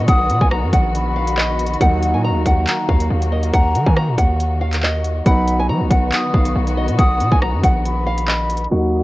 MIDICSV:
0, 0, Header, 1, 7, 480
1, 0, Start_track
1, 0, Tempo, 431655
1, 90, Time_signature, 4, 2, 24, 8
1, 10046, End_track
2, 0, Start_track
2, 0, Title_t, "Flute"
2, 0, Program_c, 0, 73
2, 88, Note_on_c, 0, 87, 127
2, 540, Note_off_c, 0, 87, 0
2, 1051, Note_on_c, 0, 83, 97
2, 1966, Note_off_c, 0, 83, 0
2, 2013, Note_on_c, 0, 78, 109
2, 2463, Note_off_c, 0, 78, 0
2, 2970, Note_on_c, 0, 82, 90
2, 3421, Note_off_c, 0, 82, 0
2, 3929, Note_on_c, 0, 82, 113
2, 4381, Note_off_c, 0, 82, 0
2, 5850, Note_on_c, 0, 83, 117
2, 6301, Note_off_c, 0, 83, 0
2, 6811, Note_on_c, 0, 87, 88
2, 7262, Note_off_c, 0, 87, 0
2, 7768, Note_on_c, 0, 87, 126
2, 8220, Note_off_c, 0, 87, 0
2, 8733, Note_on_c, 0, 83, 96
2, 9647, Note_off_c, 0, 83, 0
2, 9694, Note_on_c, 0, 78, 105
2, 10046, Note_off_c, 0, 78, 0
2, 10046, End_track
3, 0, Start_track
3, 0, Title_t, "Nylon-string guitar"
3, 0, Program_c, 1, 24
3, 93, Note_on_c, 1, 78, 98
3, 437, Note_off_c, 1, 78, 0
3, 458, Note_on_c, 1, 80, 81
3, 546, Note_off_c, 1, 80, 0
3, 566, Note_on_c, 1, 82, 92
3, 755, Note_off_c, 1, 82, 0
3, 812, Note_on_c, 1, 78, 77
3, 1262, Note_off_c, 1, 78, 0
3, 1288, Note_on_c, 1, 77, 94
3, 1476, Note_off_c, 1, 77, 0
3, 1525, Note_on_c, 1, 75, 83
3, 1978, Note_off_c, 1, 75, 0
3, 2013, Note_on_c, 1, 78, 106
3, 2357, Note_off_c, 1, 78, 0
3, 2377, Note_on_c, 1, 80, 83
3, 2465, Note_off_c, 1, 80, 0
3, 2493, Note_on_c, 1, 82, 91
3, 2680, Note_off_c, 1, 82, 0
3, 2736, Note_on_c, 1, 78, 74
3, 3184, Note_off_c, 1, 78, 0
3, 3210, Note_on_c, 1, 77, 74
3, 3661, Note_off_c, 1, 77, 0
3, 3690, Note_on_c, 1, 75, 76
3, 3878, Note_off_c, 1, 75, 0
3, 3930, Note_on_c, 1, 78, 102
3, 4275, Note_off_c, 1, 78, 0
3, 4293, Note_on_c, 1, 80, 76
3, 4383, Note_off_c, 1, 80, 0
3, 4413, Note_on_c, 1, 82, 84
3, 4600, Note_off_c, 1, 82, 0
3, 4644, Note_on_c, 1, 78, 80
3, 5098, Note_off_c, 1, 78, 0
3, 5126, Note_on_c, 1, 77, 86
3, 5315, Note_off_c, 1, 77, 0
3, 5374, Note_on_c, 1, 75, 83
3, 5823, Note_off_c, 1, 75, 0
3, 5853, Note_on_c, 1, 78, 111
3, 6197, Note_off_c, 1, 78, 0
3, 6224, Note_on_c, 1, 80, 88
3, 6309, Note_off_c, 1, 80, 0
3, 6332, Note_on_c, 1, 82, 94
3, 6519, Note_off_c, 1, 82, 0
3, 6571, Note_on_c, 1, 78, 75
3, 7022, Note_off_c, 1, 78, 0
3, 7052, Note_on_c, 1, 77, 75
3, 7502, Note_off_c, 1, 77, 0
3, 7531, Note_on_c, 1, 75, 82
3, 7718, Note_off_c, 1, 75, 0
3, 7774, Note_on_c, 1, 78, 93
3, 8117, Note_off_c, 1, 78, 0
3, 8140, Note_on_c, 1, 80, 83
3, 8227, Note_off_c, 1, 80, 0
3, 8250, Note_on_c, 1, 82, 93
3, 8438, Note_off_c, 1, 82, 0
3, 8495, Note_on_c, 1, 78, 79
3, 8944, Note_off_c, 1, 78, 0
3, 8970, Note_on_c, 1, 77, 94
3, 9158, Note_off_c, 1, 77, 0
3, 9205, Note_on_c, 1, 75, 82
3, 9658, Note_off_c, 1, 75, 0
3, 9694, Note_on_c, 1, 66, 104
3, 10037, Note_off_c, 1, 66, 0
3, 10046, End_track
4, 0, Start_track
4, 0, Title_t, "String section"
4, 0, Program_c, 2, 48
4, 0, Note_on_c, 2, 51, 84
4, 0, Note_on_c, 2, 59, 78
4, 0, Note_on_c, 2, 66, 93
4, 1972, Note_off_c, 2, 59, 0
4, 2011, Note_on_c, 2, 58, 76
4, 5806, Note_off_c, 2, 51, 0
4, 5806, Note_off_c, 2, 66, 0
4, 5812, Note_off_c, 2, 58, 0
4, 5850, Note_on_c, 2, 59, 78
4, 5850, Note_on_c, 2, 66, 96
4, 5851, Note_on_c, 2, 51, 83
4, 9652, Note_off_c, 2, 51, 0
4, 9652, Note_off_c, 2, 59, 0
4, 9652, Note_off_c, 2, 66, 0
4, 9689, Note_on_c, 2, 63, 79
4, 9690, Note_on_c, 2, 70, 72
4, 9690, Note_on_c, 2, 75, 89
4, 10046, Note_off_c, 2, 63, 0
4, 10046, Note_off_c, 2, 70, 0
4, 10046, Note_off_c, 2, 75, 0
4, 10046, End_track
5, 0, Start_track
5, 0, Title_t, "Grand piano"
5, 0, Program_c, 3, 0
5, 0, Control_c, 3, 64, 127
5, 0, Note_on_c, 3, 54, 67
5, 0, Note_on_c, 3, 59, 58
5, 0, Note_on_c, 3, 63, 81
5, 1961, Note_off_c, 3, 54, 0
5, 1967, Note_off_c, 3, 59, 0
5, 1972, Note_off_c, 3, 63, 0
5, 2000, Note_on_c, 3, 54, 67
5, 2012, Note_on_c, 3, 58, 63
5, 2024, Note_on_c, 3, 63, 84
5, 2025, Control_c, 3, 64, 0
5, 2219, Control_c, 3, 64, 127
5, 5801, Note_off_c, 3, 54, 0
5, 5806, Note_off_c, 3, 58, 0
5, 5812, Note_off_c, 3, 63, 0
5, 5843, Note_on_c, 3, 54, 63
5, 5855, Note_on_c, 3, 59, 58
5, 5866, Control_c, 3, 64, 0
5, 5866, Note_on_c, 3, 63, 79
5, 6028, Control_c, 3, 64, 127
5, 9642, Note_off_c, 3, 54, 0
5, 9648, Note_off_c, 3, 59, 0
5, 9653, Note_off_c, 3, 63, 0
5, 9679, Note_on_c, 3, 54, 61
5, 9690, Note_on_c, 3, 58, 58
5, 9702, Note_on_c, 3, 63, 77
5, 9706, Control_c, 3, 64, 0
5, 9863, Control_c, 3, 64, 127
5, 10046, Note_off_c, 3, 54, 0
5, 10046, Note_off_c, 3, 58, 0
5, 10046, Note_off_c, 3, 63, 0
5, 10046, End_track
6, 0, Start_track
6, 0, Title_t, "808-style bass"
6, 0, Program_c, 4, 38
6, 89, Note_on_c, 4, 35, 102
6, 328, Note_on_c, 4, 47, 102
6, 345, Note_off_c, 4, 35, 0
6, 450, Note_off_c, 4, 47, 0
6, 455, Note_on_c, 4, 35, 104
6, 697, Note_on_c, 4, 42, 100
6, 714, Note_off_c, 4, 35, 0
6, 804, Note_off_c, 4, 42, 0
6, 809, Note_on_c, 4, 34, 105
6, 1965, Note_off_c, 4, 34, 0
6, 2010, Note_on_c, 4, 39, 105
6, 2378, Note_on_c, 4, 46, 96
6, 2395, Note_off_c, 4, 39, 0
6, 2554, Note_on_c, 4, 39, 101
6, 2571, Note_off_c, 4, 46, 0
6, 2721, Note_off_c, 4, 39, 0
6, 2730, Note_on_c, 4, 39, 105
6, 2960, Note_off_c, 4, 39, 0
6, 3210, Note_on_c, 4, 39, 105
6, 3440, Note_off_c, 4, 39, 0
6, 3450, Note_on_c, 4, 39, 112
6, 3911, Note_off_c, 4, 39, 0
6, 3930, Note_on_c, 4, 39, 107
6, 4169, Note_on_c, 4, 51, 102
6, 4186, Note_off_c, 4, 39, 0
6, 4290, Note_off_c, 4, 51, 0
6, 4297, Note_on_c, 4, 51, 106
6, 4538, Note_on_c, 4, 46, 103
6, 4554, Note_off_c, 4, 51, 0
6, 4645, Note_off_c, 4, 46, 0
6, 4649, Note_on_c, 4, 39, 107
6, 5805, Note_off_c, 4, 39, 0
6, 5850, Note_on_c, 4, 35, 107
6, 6331, Note_on_c, 4, 54, 101
6, 6347, Note_off_c, 4, 35, 0
6, 6458, Note_on_c, 4, 35, 100
6, 6475, Note_off_c, 4, 54, 0
6, 6565, Note_off_c, 4, 35, 0
6, 6570, Note_on_c, 4, 35, 108
6, 6800, Note_off_c, 4, 35, 0
6, 7050, Note_on_c, 4, 35, 104
6, 7280, Note_off_c, 4, 35, 0
6, 7290, Note_on_c, 4, 35, 111
6, 7658, Note_on_c, 4, 47, 100
6, 7674, Note_off_c, 4, 35, 0
6, 7765, Note_off_c, 4, 47, 0
6, 7770, Note_on_c, 4, 35, 107
6, 8012, Note_on_c, 4, 47, 103
6, 8028, Note_off_c, 4, 35, 0
6, 8132, Note_off_c, 4, 47, 0
6, 8136, Note_on_c, 4, 35, 103
6, 8379, Note_on_c, 4, 42, 101
6, 8395, Note_off_c, 4, 35, 0
6, 8483, Note_off_c, 4, 42, 0
6, 8489, Note_on_c, 4, 34, 104
6, 9645, Note_off_c, 4, 34, 0
6, 9691, Note_on_c, 4, 39, 100
6, 10046, Note_off_c, 4, 39, 0
6, 10046, End_track
7, 0, Start_track
7, 0, Title_t, "Drums"
7, 88, Note_on_c, 9, 42, 86
7, 89, Note_on_c, 9, 36, 122
7, 200, Note_off_c, 9, 42, 0
7, 201, Note_off_c, 9, 36, 0
7, 329, Note_on_c, 9, 42, 84
7, 440, Note_off_c, 9, 42, 0
7, 456, Note_on_c, 9, 36, 97
7, 567, Note_off_c, 9, 36, 0
7, 568, Note_on_c, 9, 37, 98
7, 680, Note_off_c, 9, 37, 0
7, 809, Note_on_c, 9, 36, 91
7, 809, Note_on_c, 9, 42, 93
7, 920, Note_off_c, 9, 36, 0
7, 920, Note_off_c, 9, 42, 0
7, 1053, Note_on_c, 9, 42, 82
7, 1165, Note_off_c, 9, 42, 0
7, 1415, Note_on_c, 9, 42, 86
7, 1526, Note_off_c, 9, 42, 0
7, 1529, Note_on_c, 9, 39, 107
7, 1640, Note_off_c, 9, 39, 0
7, 1770, Note_on_c, 9, 42, 74
7, 1851, Note_off_c, 9, 42, 0
7, 1851, Note_on_c, 9, 42, 57
7, 1930, Note_off_c, 9, 42, 0
7, 1930, Note_on_c, 9, 42, 41
7, 2010, Note_on_c, 9, 36, 123
7, 2011, Note_off_c, 9, 42, 0
7, 2011, Note_on_c, 9, 42, 84
7, 2121, Note_off_c, 9, 36, 0
7, 2122, Note_off_c, 9, 42, 0
7, 2251, Note_on_c, 9, 42, 82
7, 2363, Note_off_c, 9, 42, 0
7, 2730, Note_on_c, 9, 36, 92
7, 2731, Note_on_c, 9, 42, 90
7, 2841, Note_off_c, 9, 36, 0
7, 2842, Note_off_c, 9, 42, 0
7, 2970, Note_on_c, 9, 39, 118
7, 2975, Note_on_c, 9, 42, 81
7, 3081, Note_off_c, 9, 39, 0
7, 3086, Note_off_c, 9, 42, 0
7, 3211, Note_on_c, 9, 36, 109
7, 3322, Note_off_c, 9, 36, 0
7, 3337, Note_on_c, 9, 42, 86
7, 3449, Note_off_c, 9, 42, 0
7, 3579, Note_on_c, 9, 42, 74
7, 3690, Note_off_c, 9, 42, 0
7, 3813, Note_on_c, 9, 42, 68
7, 3924, Note_off_c, 9, 42, 0
7, 3930, Note_on_c, 9, 36, 121
7, 3930, Note_on_c, 9, 42, 82
7, 4041, Note_off_c, 9, 42, 0
7, 4042, Note_off_c, 9, 36, 0
7, 4170, Note_on_c, 9, 42, 83
7, 4281, Note_off_c, 9, 42, 0
7, 4297, Note_on_c, 9, 36, 95
7, 4408, Note_off_c, 9, 36, 0
7, 4410, Note_on_c, 9, 37, 96
7, 4521, Note_off_c, 9, 37, 0
7, 4650, Note_on_c, 9, 36, 94
7, 4650, Note_on_c, 9, 42, 90
7, 4761, Note_off_c, 9, 36, 0
7, 4761, Note_off_c, 9, 42, 0
7, 4894, Note_on_c, 9, 42, 80
7, 5005, Note_off_c, 9, 42, 0
7, 5257, Note_on_c, 9, 39, 64
7, 5257, Note_on_c, 9, 42, 84
7, 5368, Note_off_c, 9, 39, 0
7, 5368, Note_off_c, 9, 42, 0
7, 5371, Note_on_c, 9, 39, 110
7, 5482, Note_off_c, 9, 39, 0
7, 5609, Note_on_c, 9, 42, 71
7, 5720, Note_off_c, 9, 42, 0
7, 5849, Note_on_c, 9, 42, 82
7, 5850, Note_on_c, 9, 36, 121
7, 5960, Note_off_c, 9, 42, 0
7, 5962, Note_off_c, 9, 36, 0
7, 6091, Note_on_c, 9, 42, 84
7, 6202, Note_off_c, 9, 42, 0
7, 6570, Note_on_c, 9, 36, 93
7, 6570, Note_on_c, 9, 42, 92
7, 6681, Note_off_c, 9, 36, 0
7, 6681, Note_off_c, 9, 42, 0
7, 6809, Note_on_c, 9, 39, 118
7, 6814, Note_on_c, 9, 42, 81
7, 6920, Note_off_c, 9, 39, 0
7, 6925, Note_off_c, 9, 42, 0
7, 7050, Note_on_c, 9, 36, 108
7, 7162, Note_off_c, 9, 36, 0
7, 7176, Note_on_c, 9, 42, 85
7, 7287, Note_off_c, 9, 42, 0
7, 7418, Note_on_c, 9, 42, 75
7, 7529, Note_off_c, 9, 42, 0
7, 7652, Note_on_c, 9, 42, 70
7, 7764, Note_off_c, 9, 42, 0
7, 7770, Note_on_c, 9, 36, 124
7, 7770, Note_on_c, 9, 42, 85
7, 7881, Note_off_c, 9, 36, 0
7, 7881, Note_off_c, 9, 42, 0
7, 8011, Note_on_c, 9, 42, 83
7, 8122, Note_off_c, 9, 42, 0
7, 8137, Note_on_c, 9, 36, 98
7, 8248, Note_off_c, 9, 36, 0
7, 8250, Note_on_c, 9, 37, 96
7, 8361, Note_off_c, 9, 37, 0
7, 8490, Note_on_c, 9, 36, 92
7, 8490, Note_on_c, 9, 42, 92
7, 8601, Note_off_c, 9, 36, 0
7, 8601, Note_off_c, 9, 42, 0
7, 8735, Note_on_c, 9, 42, 81
7, 8846, Note_off_c, 9, 42, 0
7, 9096, Note_on_c, 9, 42, 85
7, 9207, Note_off_c, 9, 42, 0
7, 9210, Note_on_c, 9, 39, 109
7, 9322, Note_off_c, 9, 39, 0
7, 9451, Note_on_c, 9, 42, 73
7, 9531, Note_off_c, 9, 42, 0
7, 9531, Note_on_c, 9, 42, 57
7, 9611, Note_off_c, 9, 42, 0
7, 9611, Note_on_c, 9, 42, 41
7, 9722, Note_off_c, 9, 42, 0
7, 10046, End_track
0, 0, End_of_file